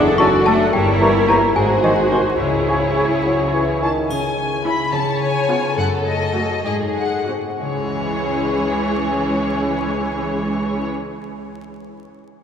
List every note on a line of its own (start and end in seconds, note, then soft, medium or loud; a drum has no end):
0.00 0.72 F#1 medium
0.00 0.76 F#2 medium
0.00 0.18 D4 medium
0.00 0.74 D4 medium
0.00 0.17 A4 soft
0.00 0.74 A4 medium
0.00 0.17 F#5 soft
0.00 0.17 D6 medium
0.18 0.30 D3 medium
0.18 0.76 A3 soft
0.18 0.27 C#4 medium
0.18 0.29 F#4 soft
0.18 0.46 F#4 soft
0.18 0.47 F#4 soft
0.18 0.30 A4 soft
0.18 0.46 D5 soft
0.18 0.25 A5 soft
0.18 0.44 C#6 medium
0.46 0.57 D3 soft
0.46 0.73 A3 medium
0.46 0.76 D4 soft
0.46 0.74 D4 soft
0.46 0.56 F#4 soft
0.46 0.76 F#4 soft
0.46 0.73 A4 soft
0.46 0.57 A4 soft
0.46 0.73 F#5 soft
0.46 0.71 A5 medium
0.46 0.52 A5 soft
0.73 1.52 G1 medium
0.73 1.58 G2 medium
0.73 1.27 G3 medium
0.73 1.54 E4 medium
0.73 1.52 E4 medium
0.73 1.52 A#4 soft
0.73 1.56 A#4 soft
0.73 1.52 C#5 medium
0.73 1.24 G5 medium
1.01 1.11 E3 soft
1.01 1.58 A#3 soft
1.01 1.11 G4 soft
1.01 1.11 C#5 soft
1.01 1.07 A#5 soft
1.28 1.39 E3 soft
1.28 1.36 A#3 medium
1.28 1.58 C#4 soft
1.28 1.58 E4 soft
1.28 1.38 G4 soft
1.28 1.38 C#5 soft
1.28 1.34 A#5 soft
1.28 1.54 A#5 soft
1.55 2.40 G#1 soft
1.55 2.43 G#2 soft
1.55 1.64 G#3 medium
1.55 2.40 F#4 soft
1.55 2.38 F#4 soft
1.55 2.39 G#4 soft
1.55 2.38 C5 soft
1.55 1.82 G#5 medium
1.83 1.91 D#3 soft
1.83 1.94 D#3 soft
1.83 5.74 G#3 soft
1.83 1.94 F#4 soft
1.83 1.93 C5 soft
1.83 2.10 D#5 soft
1.83 1.90 G#5 soft
2.11 2.19 C3 soft
2.11 2.22 D#3 soft
2.11 2.42 C4 soft
2.11 2.22 F#4 soft
2.11 2.43 F#4 soft
2.11 2.21 C5 soft
2.11 2.38 C5 soft
2.11 2.18 G#5 soft
2.39 3.86 C#2 soft
2.39 3.79 C#3 soft
2.39 4.09 C#3 soft
2.39 3.89 E4 soft
2.39 3.79 E4 soft
2.39 3.87 G#4 soft
2.39 3.82 C#5 soft
2.39 3.78 C#5 soft
2.39 3.82 C#5 soft
2.68 2.79 C#3 soft
2.68 4.37 C#4 soft
2.68 2.79 E4 soft
2.68 2.79 C#5 soft
2.68 2.75 G#5 soft
2.97 3.07 C#3 soft
2.97 3.07 E4 soft
2.97 5.80 G#4 soft
2.97 3.07 C#5 soft
2.97 3.03 G#5 soft
3.26 3.55 F#3 soft
3.26 3.81 C#5 soft
3.53 3.84 E3 soft
3.53 3.64 E4 soft
3.53 3.63 C#5 soft
3.53 4.96 E5 soft
3.53 3.59 G#5 soft
3.81 4.10 D#3 soft
3.81 3.92 E4 soft
3.81 3.92 C#5 soft
3.81 6.68 C#5 soft
3.81 3.88 G#5 soft
3.81 3.90 A5 soft
4.10 4.77 C#3 medium
4.10 4.92 C#3 soft
4.10 4.64 G#5 medium
4.10 triangle soft
4.38 4.64 C#4 soft
4.65 5.48 C#4 soft
4.65 4.86 C#4 soft
4.65 4.86 E4 soft
4.65 4.96 E4 soft
4.65 4.93 B5 medium
4.93 5.79 C#3 soft
4.93 5.60 C#3 medium
4.93 5.73 C#5 medium
4.93 5.21 A5 medium
5.21 5.80 B3 soft
5.21 5.76 G#5 medium
5.49 5.70 B3 medium
5.49 6.34 C#4 soft
5.49 5.80 F4 soft
5.49 5.70 F4 soft
5.77 6.68 F#2 soft
5.77 6.48 F#2 medium
5.77 6.64 A4 medium
5.77 5.85 F#5 medium
6.05 6.68 A3 soft
6.05 6.64 D#5 medium
6.35 6.58 A3 soft
6.35 6.68 C#4 soft
6.35 6.58 F#4 soft
6.35 7.28 F#4 soft
6.65 7.43 G#2 soft
6.65 7.64 G#2 soft
6.65 7.12 G#4 soft
6.65 6.73 D#5 medium
6.97 7.67 G#3 soft
6.97 7.28 F#5 soft
7.28 7.64 C4 soft
7.28 7.53 C4 soft
7.28 7.53 F#4 soft
7.28 7.64 F#4 soft
7.61 10.87 C#2 soft
7.61 11.51 C#3 soft
7.61 10.87 E3 soft
7.61 10.87 G#3 soft
7.61 10.87 C#4 soft
7.61 10.87 G#4 soft
7.61 10.86 C#5 soft
7.68 11.13 G#3 soft
7.75 11.01 C#4 soft
7.82 11.08 E4 soft
7.89 11.14 C#5 soft